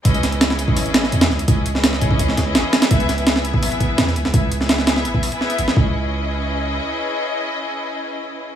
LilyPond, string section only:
\new Staff \with { instrumentName = "String section" } { \time 4/4 \key cis \minor \tempo 4 = 168 <cis' e' gis' b' dis''>8. <cis' e' gis' b' dis''>2.~ <cis' e' gis' b' dis''>16 | <cis' e' gis' b' dis''>8. <cis' e' gis' b' dis''>2 <cis' e' gis' b' dis''>4~ <cis' e' gis' b' dis''>16 | <b e' gis' b' e''>8. <b e' gis' b' e''>2.~ <b e' gis' b' e''>16 | <b e' gis' b' e''>8. <b e' gis' b' e''>2 <b e' gis' b' e''>4~ <b e' gis' b' e''>16 |
<cis' e' gis' b' dis''>1~ | <cis' e' gis' b' dis''>1 | }